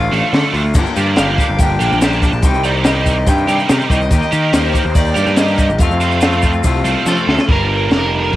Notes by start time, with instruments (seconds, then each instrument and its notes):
Already playing: picked electric bass A1, clean electric guitar D3 A3 D4 F4, overdriven electric guitar F5
0.12 picked electric bass A1, distorted electric guitar F3 A3 D4 A4, open hi-hat
0.32 clean electric guitar D3 A3 D4 F4, picked electric bass D3, distorted electric guitar F3 A4, snare, open hi-hat
0.53 picked electric bass D2, clean electric guitar A3 D4 F4, open hi-hat
0.74 picked electric bass G1, clean electric guitar G2 D3 F3 A#3 D4, tonewheel organ F4 A#4 G5 D6, kick, crash, shaker
0.79 clean electric guitar G4
0.86 shaker
0.95 picked electric bass G2, clean electric guitar F3 A#3 D4 G4, open hi-hat, shaker
1.16 picked electric bass G1, clean electric guitar F3 A#3 D4, overdriven electric guitar F5, snare, open hi-hat, shaker
1.20 clean electric guitar G4
1.38 clean electric guitar A#3 D4 G4, kick, open hi-hat, shaker
1.42 clean electric guitar F3
1.49 picked electric bass G1
1.58 clean electric guitar G2 D3 F3 A#3 D4 G4, overdriven electric guitar G5, kick, open hi-hat, shaker
1.79 picked electric bass A#1, distorted electric guitar A#3 D4 G4, open hi-hat, shaker
1.91 picked electric bass A#1, shaker
2.00 clean electric guitar F3 A#3 D4 G4, overdriven electric guitar A5, snare, open hi-hat, shaker
2.13 shaker
2.22 clean electric guitar F3 A#3 D4 G4, kick, open hi-hat, shaker
2.33 picked electric bass A#1, shaker
2.42 picked electric bass C2, clean electric guitar C3 D#3 G3 D#4 G4, tonewheel organ D#4 C5 C6, overdriven electric guitar G5, kick, open hi-hat, shaker
2.54 picked electric bass C2, shaker
2.64 clean electric guitar G3 D#4 G4, distorted electric guitar C4, overdriven electric guitar D5, open hi-hat, shaker
2.83 clean electric guitar D#3 G3 D#4 G4, distorted electric guitar C4, snare, open hi-hat, shaker
2.87 overdriven electric guitar D#5
3.05 clean electric guitar G3 D#4 G4, kick, open hi-hat, shaker
3.26 picked electric bass G2, clean electric guitar C3 D#3 G3 D#4 G4, overdriven electric guitar G5, kick, open hi-hat, shaker
3.38 shaker
3.48 picked electric bass G2, distorted electric guitar G3 C4 D#4 G4, open hi-hat, shaker
3.59 shaker
3.68 picked electric bass C3, clean electric guitar D#3 G3 D#4 G4, distorted electric guitar C4, snare, open hi-hat, shaker
3.81 shaker
3.89 picked electric bass C2, clean electric guitar G3 D#4 G4, overdriven electric guitar D#5, kick, open hi-hat, shaker
4.02 shaker
4.10 picked electric bass D#2, clean electric guitar D#3 A#3 D#4 G4, tonewheel organ A#4 A#5, kick, open hi-hat, shaker
4.22 overdriven electric guitar D#5, shaker
4.32 picked electric bass D#3, clean electric guitar A#3 D#4 G4, open hi-hat, shaker
4.52 picked electric bass D#2, clean electric guitar D#3 A#3 D#4 G4, overdriven electric guitar C5, snare, open hi-hat, shaker
4.74 clean electric guitar A#3 D#4 G4, kick, open hi-hat, shaker
4.85 picked electric bass D#2
4.94 clean electric guitar D#3 A#3 D#4 G4, overdriven electric guitar D5, kick, open hi-hat, shaker
5.06 shaker
5.15 picked electric bass G2, distorted electric guitar A#3 D#4 G4, open hi-hat, shaker
5.27 picked electric bass G2, shaker
5.36 clean electric guitar D#3 A#3 D#4 G4, overdriven electric guitar D#5, snare, open hi-hat, shaker
5.48 shaker
5.58 clean electric guitar D#4 G4, kick, open hi-hat, shaker
5.62 clean electric guitar A#3
5.70 picked electric bass A#1, shaker
5.79 clean electric guitar F2 C3 F3 A3 C4, picked electric bass F2, tonewheel organ F4 C5 A5 C6, overdriven electric guitar F5, kick, open hi-hat, shaker
5.83 clean electric guitar F4
5.90 picked electric bass F2, shaker
6.00 clean electric guitar F3 A3 C4 F4, open hi-hat, shaker
6.11 shaker
6.21 clean electric guitar F3 A3 C4 F4, snare, open hi-hat, shaker
6.32 shaker
6.42 clean electric guitar F3 A3 C4 F4, kick, open hi-hat, shaker
6.53 shaker
6.63 picked electric bass C2, clean electric guitar F2 C3 F3 A3 C4 F4, kick, open hi-hat, shaker
6.85 picked electric bass C2, distorted electric guitar A3 C4 F4, open hi-hat, shaker
7.05 clean electric guitar F3 A3 C4 F4, picked electric bass F3, overdriven electric guitar A4, snare, shaker
7.17 shaker
7.27 picked electric bass D2, clean electric guitar F3 A3 C4 F4, snare
7.37 snare, shaker
7.48 picked electric bass G1, clean electric guitar G2, distorted electric guitar G3 A#3 D4, overdriven electric guitar A#4, kick, open hi-hat
7.90 picked electric bass F1, clean electric guitar F2, overdriven electric guitar A#4, snare, open hi-hat
8.33 open hi-hat